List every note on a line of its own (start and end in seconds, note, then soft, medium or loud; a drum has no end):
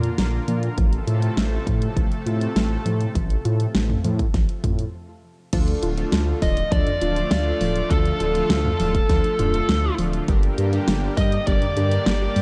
0.00 0.74 D3 medium
0.00 0.74 A#3 medium
0.00 0.13 F4 medium
0.00 4.90 F4 medium
0.00 0.74 A#4 loud
0.00 closed hi-hat soft
0.18 0.39 A#1 medium
0.18 0.43 A#3 medium
0.18 snare loud
0.18 closed hi-hat medium
0.48 0.69 A#2 medium
0.48 0.73 F3 medium
0.48 closed hi-hat medium
0.63 closed hi-hat medium
0.78 0.99 A1 loud
0.78 4.90 C3 medium
0.78 0.93 F3 medium
0.78 4.90 A3 medium
0.78 4.90 A4 medium
0.78 kick loud
0.78 closed hi-hat medium
0.93 closed hi-hat soft
1.07 1.28 A2 medium
1.07 1.32 F4 medium
1.07 closed hi-hat medium
1.22 closed hi-hat medium
1.37 1.58 A1 medium
1.37 1.62 A3 medium
1.37 snare loud
1.37 closed hi-hat medium
1.67 1.88 A2 medium
1.67 1.92 F3 medium
1.67 kick loud
1.67 closed hi-hat medium
1.82 closed hi-hat medium
1.97 2.07 A1 loud
1.97 2.11 F3 medium
1.97 kick loud
1.97 closed hi-hat medium
2.12 closed hi-hat soft
2.26 2.47 A2 loud
2.26 2.51 F4 medium
2.26 closed hi-hat medium
2.41 closed hi-hat medium
2.56 2.77 A1 medium
2.56 2.81 A3 medium
2.56 snare loud
2.56 closed hi-hat medium
2.86 3.07 A2 medium
2.86 3.10 F3 medium
2.86 closed hi-hat medium
3.01 closed hi-hat medium
3.15 3.36 A1 loud
3.15 3.30 F3 medium
3.15 kick loud
3.15 closed hi-hat medium
3.30 closed hi-hat soft
3.45 3.66 A2 medium
3.45 3.70 F4 medium
3.45 closed hi-hat medium
3.60 closed hi-hat medium
3.75 3.96 A1 medium
3.75 4.00 A3 medium
3.75 snare loud
3.75 closed hi-hat medium
3.90 mid tom medium
4.04 4.26 A2 loud
4.04 4.29 F3 medium
4.04 closed hi-hat medium
4.19 kick loud
4.19 closed hi-hat medium
4.34 4.45 A1 loud
4.34 4.49 F3 medium
4.34 kick loud
4.34 snare soft
4.34 closed hi-hat medium
4.49 closed hi-hat soft
4.64 4.85 A2 loud
4.64 4.89 F4 medium
4.64 kick medium
4.64 closed hi-hat medium
4.64 mid tom medium
4.79 closed hi-hat medium
5.53 5.74 D2 loud
5.53 12.42 D3 medium
5.53 5.68 F3 medium
5.53 10.24 F3 medium
5.53 10.24 A3 medium
5.53 5.94 D4 medium
5.53 10.24 F4 loud
5.53 5.94 F4 medium
5.53 5.94 A4 loud
5.53 kick loud
5.53 closed hi-hat medium
5.53 crash loud
5.68 closed hi-hat soft
5.83 6.04 D1 medium
5.83 6.07 F4 medium
5.83 closed hi-hat medium
5.97 6.39 D4 loud
5.97 6.39 F4 medium
5.97 6.39 A4 loud
5.97 closed hi-hat medium
6.12 6.34 D2 loud
6.12 6.37 A3 medium
6.12 snare loud
6.12 closed hi-hat medium
6.42 6.63 D1 loud
6.42 6.67 F3 medium
6.42 6.59 D4 medium
6.42 6.59 F4 medium
6.42 6.59 A4 loud
6.42 6.70 D#5 loud
6.42 kick loud
6.42 open hi-hat medium
6.57 closed hi-hat medium
6.72 6.82 D2 loud
6.72 6.87 F3 medium
6.72 6.89 D4 medium
6.72 6.89 F4 medium
6.72 6.89 A4 loud
6.72 7.30 D5 loud
6.72 kick loud
6.72 closed hi-hat medium
6.87 closed hi-hat soft
6.87 mid tom medium
7.01 7.23 D1 loud
7.01 7.19 D4 medium
7.01 7.19 F4 medium
7.01 7.26 F4 medium
7.01 7.19 A4 medium
7.01 closed hi-hat medium
7.16 closed hi-hat medium
7.31 7.52 D2 medium
7.31 7.56 A3 medium
7.31 7.92 D5 loud
7.31 snare loud
7.31 closed hi-hat medium
7.46 7.87 D4 medium
7.46 7.87 F4 medium
7.46 7.87 A4 medium
7.61 7.82 D1 medium
7.61 7.86 F3 medium
7.61 open hi-hat medium
7.76 closed hi-hat medium
7.91 8.12 D2 loud
7.91 8.06 F3 medium
7.91 8.32 D4 medium
7.91 8.32 F4 medium
7.91 8.32 A4 loud
7.91 8.49 A4 loud
7.91 kick loud
7.91 closed hi-hat medium
8.05 closed hi-hat soft
8.20 8.41 D1 medium
8.20 8.45 F4 medium
8.20 closed hi-hat medium
8.35 8.76 D4 loud
8.35 8.76 F4 medium
8.35 8.76 A4 loud
8.35 closed hi-hat medium
8.50 8.71 D2 medium
8.50 8.75 A3 medium
8.50 9.95 A4 medium
8.50 snare loud
8.50 closed hi-hat medium
8.65 mid tom medium
8.80 9.01 D1 loud
8.80 9.05 F3 medium
8.80 8.97 D4 medium
8.80 8.97 F4 medium
8.80 8.97 A4 medium
8.80 open hi-hat medium
8.95 kick loud
8.95 closed hi-hat medium
9.09 9.20 D2 loud
9.09 9.24 F3 medium
9.09 9.27 D4 loud
9.09 9.27 F4 medium
9.09 9.27 A4 loud
9.09 kick loud
9.09 snare soft
9.09 closed hi-hat medium
9.24 closed hi-hat soft
9.39 9.60 D1 loud
9.39 9.56 D4 medium
9.39 9.56 F4 medium
9.39 9.64 F4 medium
9.39 9.56 A4 medium
9.39 closed hi-hat medium
9.39 mid tom medium
9.54 closed hi-hat medium
9.69 9.90 D2 medium
9.69 9.94 A3 medium
9.69 snare loud
9.69 closed hi-hat medium
9.84 10.25 D4 medium
9.84 10.25 F4 medium
9.84 10.25 A4 medium
9.98 10.20 D1 medium
9.98 10.23 F3 medium
9.98 open hi-hat medium
10.13 closed hi-hat medium
10.28 10.49 G1 loud
10.28 12.42 G3 medium
10.28 10.43 G3 medium
10.28 12.42 A#3 medium
10.28 10.69 D4 medium
10.28 12.42 G4 loud
10.28 10.69 G4 medium
10.28 10.69 A#4 loud
10.28 kick loud
10.28 closed hi-hat medium
10.43 closed hi-hat soft
10.58 10.79 G2 medium
10.58 10.83 G4 medium
10.58 closed hi-hat medium
10.73 11.14 D4 loud
10.73 11.14 G4 medium
10.73 11.14 A#4 loud
10.73 closed hi-hat medium
10.88 11.09 G1 medium
10.88 11.12 A#3 medium
10.88 snare loud
10.88 closed hi-hat medium
11.17 11.39 G2 medium
11.17 11.42 G3 medium
11.17 11.34 D4 medium
11.17 11.34 G4 medium
11.17 11.34 A#4 loud
11.17 11.45 D#5 loud
11.17 kick loud
11.17 open hi-hat medium
11.32 closed hi-hat medium
11.47 11.58 G1 loud
11.47 11.62 G3 medium
11.47 11.64 D4 medium
11.47 11.64 G4 medium
11.47 11.64 A#4 loud
11.47 12.05 D5 loud
11.47 kick loud
11.47 closed hi-hat medium
11.62 closed hi-hat soft
11.62 mid tom medium
11.77 11.98 G2 medium
11.77 11.94 D4 medium
11.77 11.94 G4 medium
11.77 12.02 G4 medium
11.77 11.94 A#4 medium
11.77 closed hi-hat medium
11.91 closed hi-hat medium
12.06 12.28 G1 medium
12.06 12.31 A#3 medium
12.06 12.42 D5 loud
12.06 snare loud
12.06 closed hi-hat medium
12.21 12.42 D4 medium
12.21 12.42 G4 medium
12.21 12.42 A#4 medium
12.36 12.42 G2 medium
12.36 12.42 G3 medium
12.36 open hi-hat medium